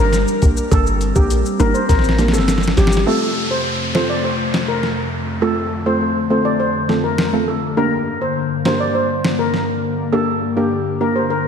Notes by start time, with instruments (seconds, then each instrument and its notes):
Already playing: 808-style bass G1, analog synth pad G3 D4 A#4
0.13 snare, closed hi-hat, maracas
0.28 maracas
0.42 808-style bass A#1, synth pluck A#3 D4 G4 A#4, kick, closed hi-hat, maracas
0.57 maracas
0.71 808-style bass G1, synth pluck A#3 D4 G4 A#4, analog synth pad C4, steel pan A4, kick, closed hi-hat, maracas
0.87 maracas
1.01 closed hi-hat, maracas
1.15 808-style bass A#1, synth pluck A#3 D4 G4 A#4, steel pan G4, kick, maracas
1.30 closed hi-hat, maracas
1.46 maracas
1.60 808-style bass G1, synth pluck A#3 D4 G4 A#4, steel pan A#4, closed hi-hat, high timbale, maracas
1.74 steel pan C5, maracas
1.89 808-style bass A1, steel pan A#4, kick, snare, closed hi-hat, maracas
1.99 snare
2.04 maracas
2.09 snare
2.18 synth pluck A#3 D4 G4 A#4, snare, closed hi-hat, maracas
2.28 snare
2.33 808-style bass G1, steel pan A4, maracas
2.38 snare
2.48 snare, closed hi-hat, maracas
2.58 snare
2.63 maracas
2.68 snare
2.77 808-style bass G1, steel pan G4, snare, closed hi-hat, maracas
2.87 snare
2.92 maracas
2.97 snare
3.07 analog synth pad F2 C3 A3, synth pluck A3 C4 F4 A4, steel pan A4, downlifter
3.51 steel pan C5
3.95 synth pluck A3 C4 F4 A4, steel pan C5, snare
4.10 steel pan D5
4.24 steel pan C5
4.54 snare
4.68 steel pan A#4
4.83 snare
5.42 analog synth pad D3, synth pluck A3 C4 F4 A4, steel pan A4
5.86 synth pluck A3 C4 F4 A4, steel pan C5
6.30 synth pluck A3 C4 F4 A4, steel pan C5
6.45 steel pan D5
6.60 steel pan C5
6.89 synth pluck A3 C4 F4 A4, snare
7.04 steel pan A#4
7.18 snare
7.33 synth pluck A3 C4 F4 A4
7.48 steel pan A4
7.77 analog synth pad G2 A#3, synth pluck A#3 D4 G4 A#4, steel pan A#4
8.21 steel pan C5
8.65 synth pluck A#3 D4 G4 A#4, steel pan C5, snare
8.80 steel pan D5
8.95 steel pan C5
9.25 snare
9.39 steel pan A#4
9.54 snare
10.12 synth pluck A#3 D4 G4 A#4, steel pan A4
10.56 synth pluck A#3 D4 G4 A#4, steel pan G4
11.01 synth pluck A#3 D4 G4 A#4, steel pan A#4
11.16 steel pan C5
11.30 steel pan A#4